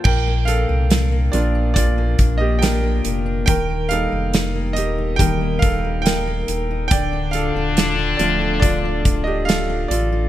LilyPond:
<<
  \new Staff \with { instrumentName = "Grand piano" } { \time 4/4 \key bes \major \tempo 4 = 70 <bes' g''>8 <a' f''>4 <f' d''>8 <f' d''>8. <g' ees''>16 <bes' g''>4 | <bes' g''>8 <a' f''>4 <g' ees''>8 <bes' g''>8 <a' f''>8 <bes' g''>4 | <d'' g''>8 <a' f''>4 <f' d''>8 <f' d''>8. <g' ees''>16 <a' f''>8 <f' d''>8 | }
  \new Staff \with { instrumentName = "Grand piano" } { \time 4/4 \key bes \major r4. <f bes d'>2~ <f bes d'>8 | r8 <g bes ees'>4. <g bes ees'>8 r4. | r4. <f a d'>2~ <f a d'>8 | }
  \new Staff \with { instrumentName = "Steel-string acoustic guitar" } { \time 4/4 \key bes \major bes,16 bes16 d'16 bes16 d'16 bes16 bes'16 d'16 bes,16 bes16 d'16 bes16 d'16 bes16 bes'16 d'16 | ees16 bes16 ees'16 bes16 ees'16 bes16 bes'16 ees'16 ees16 bes16 ees'16 bes16 ees'16 bes16 bes'16 ees'16 | d16 d'16 f'16 d'16 f'16 d'16 a'16 f'16 d16 d'16 f'16 d'16 f'16 d'16 a'16 f'16 | }
  \new Staff \with { instrumentName = "French horn section" } { \clef bass \time 4/4 \key bes \major r1 | r1 | <d d'>2.~ <d d'>8 r8 | }
  \new Staff \with { instrumentName = "Sub bass" } { \clef bass \time 4/4 \key bes \major bes,,8. c,8. bes,,4 bes,,4 f,,8 | ees,,8. f,,8. ees,,4 ees,,4 ees,,8 | d,,8. ees,,8. d,,2 a,,8 | }
  \new DrumStaff \with { instrumentName = "Drums" } \drummode { \time 4/4 <cymc bd>8 hh8 <hh sn>8 hh8 <hh bd>8 <hh bd>8 <hh sn>8 hh8 | <hh bd>8 hh8 <hh sn>8 hh8 <hh bd>8 <hh bd>8 <hh sn>8 hh8 | <hh bd>8 hh8 <hh sn>8 hh8 <hh bd>8 <hh bd>8 <hh sn>8 hh8 | }
>>